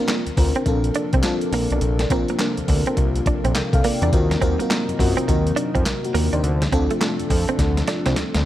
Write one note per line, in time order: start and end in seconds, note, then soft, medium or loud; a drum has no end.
0.00 8.45 C3 medium
0.00 4.08 F3 medium
0.00 6.39 A#3 medium
0.00 0.38 C4 medium
0.00 0.38 D4 medium
0.00 4.08 D4 medium
0.00 0.39 F4 medium
0.00 0.39 A#4 loud
0.08 0.24 A#3 medium
0.08 snare loud
0.08 clap medium
0.08 closed hi-hat medium
0.26 0.31 D2 soft
0.26 closed hi-hat soft
0.37 0.53 D2 loud
0.37 0.65 C4 medium
0.37 0.65 D4 medium
0.37 0.65 F4 medium
0.37 0.65 A#4 loud
0.37 muted clean electric guitar stroke soft
0.37 kick medium
0.37 open hi-hat medium
0.55 0.65 C4 medium
0.55 closed hi-hat soft
0.66 0.90 A#1 loud
0.66 1.21 C4 medium
0.66 1.21 D4 medium
0.66 1.21 F4 medium
0.66 1.21 A4 medium
0.66 muted clean electric guitar stroke soft
0.66 kick medium
0.66 closed hi-hat medium
0.84 closed hi-hat soft
0.95 1.10 D4 medium
0.95 closed hi-hat medium
1.13 1.22 C2 loud
1.13 1.23 C4 medium
1.13 kick loud
1.13 closed hi-hat soft
1.23 1.51 C4 medium
1.23 1.51 D4 medium
1.23 1.52 F4 medium
1.23 1.52 A4 loud
1.23 muted clean electric guitar stroke soft
1.23 snare loud
1.23 clap medium
1.23 closed hi-hat medium
1.41 closed hi-hat soft
1.52 1.68 A#1 medium
1.52 1.68 A#3 medium
1.52 2.07 C4 medium
1.52 2.07 D4 medium
1.52 2.07 F4 medium
1.52 2.08 A#4 loud
1.52 open hi-hat medium
1.70 1.80 B1 medium
1.70 1.81 D4 medium
1.70 closed hi-hat medium
1.81 2.06 A#1 loud
1.81 closed hi-hat medium
1.99 muted clean electric guitar stroke soft
1.99 snare medium
1.99 closed hi-hat medium
2.10 2.26 A#1 medium
2.10 3.19 C4 loud
2.10 2.26 C4 medium
2.10 3.19 D4 medium
2.10 3.19 F4 medium
2.10 3.19 A#4 loud
2.10 kick medium
2.10 closed hi-hat medium
2.28 2.38 A#3 medium
2.28 closed hi-hat medium
2.39 2.55 A#3 medium
2.39 snare loud
2.39 clap medium
2.39 closed hi-hat medium
2.57 2.62 D2 medium
2.57 closed hi-hat soft
2.68 2.84 D2 medium
2.68 muted clean electric guitar stroke soft
2.68 kick medium
2.68 open hi-hat medium
2.86 2.96 C4 medium
2.86 closed hi-hat soft
2.97 3.21 C2 medium
2.97 muted clean electric guitar stroke soft
2.97 kick medium
2.97 closed hi-hat medium
3.16 closed hi-hat soft
3.26 3.42 D4 medium
3.26 kick loud
3.26 closed hi-hat medium
3.44 3.53 A#1 loud
3.44 3.53 C4 medium
3.44 closed hi-hat medium
3.55 3.62 C2 medium
3.55 3.73 A#4 medium
3.55 3.72 G5 medium
3.55 muted clean electric guitar stroke soft
3.55 snare medium
3.55 clap medium
3.55 closed hi-hat medium
3.73 3.82 C2 medium
3.73 3.84 A4 medium
3.73 3.84 F5 medium
3.73 kick loud
3.73 closed hi-hat medium
3.84 3.99 A#3 medium
3.84 4.02 F4 medium
3.84 4.01 D5 medium
3.84 open hi-hat medium
4.02 4.11 E2 medium
4.02 4.11 D4 medium
4.02 4.30 D4 medium
4.02 4.13 A#4 medium
4.02 closed hi-hat medium
4.12 4.37 D#2 loud
4.12 6.41 F#3 medium
4.12 4.40 C4 medium
4.12 6.41 D#4 medium
4.12 4.40 F4 medium
4.12 4.40 F#4 medium
4.12 4.40 A#4 medium
4.12 kick loud
4.12 closed hi-hat medium
4.31 muted clean electric guitar stroke soft
4.31 snare medium
4.31 closed hi-hat medium
4.41 4.57 D#2 loud
4.41 4.56 C4 medium
4.41 4.58 C4 loud
4.41 4.59 F4 medium
4.41 4.59 F#4 medium
4.41 4.59 A#4 loud
4.41 kick medium
4.41 closed hi-hat medium
4.59 4.68 A#3 medium
4.59 4.97 C4 medium
4.59 4.97 F4 medium
4.59 4.97 F#4 medium
4.59 4.97 A#4 medium
4.59 closed hi-hat medium
4.70 4.85 A#3 medium
4.70 snare loud
4.70 clap medium
4.70 closed hi-hat medium
4.89 4.93 F#2 soft
4.89 closed hi-hat soft
4.99 5.15 F#2 loud
4.99 5.27 C4 medium
4.99 5.27 F4 medium
4.99 5.27 F#4 medium
4.99 5.27 A#4 medium
4.99 muted clean electric guitar stroke soft
4.99 kick loud
4.99 open hi-hat medium
5.17 5.26 C4 medium
5.17 closed hi-hat medium
5.28 5.52 D#2 medium
5.28 5.82 C4 medium
5.28 5.83 F4 medium
5.28 5.83 F#4 medium
5.28 5.83 A#4 medium
5.28 muted clean electric guitar stroke soft
5.28 kick medium
5.28 closed hi-hat medium
5.47 closed hi-hat soft
5.56 5.71 D4 medium
5.56 closed hi-hat medium
5.75 5.84 F2 medium
5.75 5.84 C4 medium
5.75 kick loud
5.75 closed hi-hat medium
5.86 muted clean electric guitar stroke soft
5.86 snare medium
5.86 clap medium
5.86 closed hi-hat medium
6.04 6.15 A#3 medium
6.04 6.15 F#4 medium
6.04 closed hi-hat soft
6.14 6.30 D#2 medium
6.14 6.29 A#3 medium
6.14 6.33 D4 medium
6.14 6.32 A#4 medium
6.14 open hi-hat medium
6.33 6.42 D#2 medium
6.33 6.42 D4 medium
6.33 6.61 D#4 medium
6.33 6.61 C5 medium
6.33 closed hi-hat medium
6.43 6.68 D2 loud
6.43 8.45 F3 medium
6.43 8.45 A3 medium
6.43 8.45 D4 medium
6.43 closed hi-hat medium
6.62 muted clean electric guitar stroke soft
6.62 snare medium
6.62 closed hi-hat medium
6.72 6.88 D2 loud
6.72 7.80 C4 loud
6.72 6.87 C4 loud
6.72 7.80 D4 medium
6.72 7.81 F4 loud
6.72 7.81 A4 loud
6.72 kick medium
6.72 closed hi-hat medium
6.90 6.99 A3 medium
6.90 closed hi-hat medium
7.01 7.16 A3 medium
7.01 snare loud
7.01 clap medium
7.01 closed hi-hat medium
7.19 7.24 F2 medium
7.19 closed hi-hat soft
7.30 7.45 F2 loud
7.30 muted clean electric guitar stroke soft
7.30 kick medium
7.30 open hi-hat medium
7.48 7.57 C4 medium
7.48 closed hi-hat soft
7.59 7.83 D2 loud
7.59 muted clean electric guitar stroke soft
7.59 kick medium
7.59 snare medium
7.59 closed hi-hat medium
7.77 snare soft
7.77 closed hi-hat medium
7.87 8.03 D4 medium
7.87 snare medium
7.87 closed hi-hat medium
8.06 8.15 C2 loud
8.06 8.15 C4 medium
8.06 snare medium
8.06 closed hi-hat medium
8.16 8.24 D2 soft
8.16 muted clean electric guitar stroke soft
8.16 snare medium
8.16 closed hi-hat medium
8.34 8.44 D2 loud
8.34 snare medium
8.34 closed hi-hat medium